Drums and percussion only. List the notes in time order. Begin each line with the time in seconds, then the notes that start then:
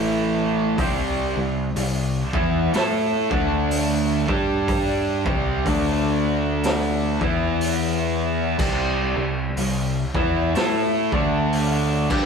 0.78 kick, open hi-hat
1.76 open hi-hat
2.33 kick
2.74 snare, open hi-hat
3.31 kick
3.71 open hi-hat
4.28 kick
4.68 kick, open hi-hat
5.26 kick
5.66 kick, open hi-hat
6.63 snare, open hi-hat
7.21 kick
7.61 open hi-hat
8.59 kick, crash
9.57 open hi-hat
10.15 kick
10.55 snare, open hi-hat
11.12 kick
11.53 open hi-hat
12.10 kick, crash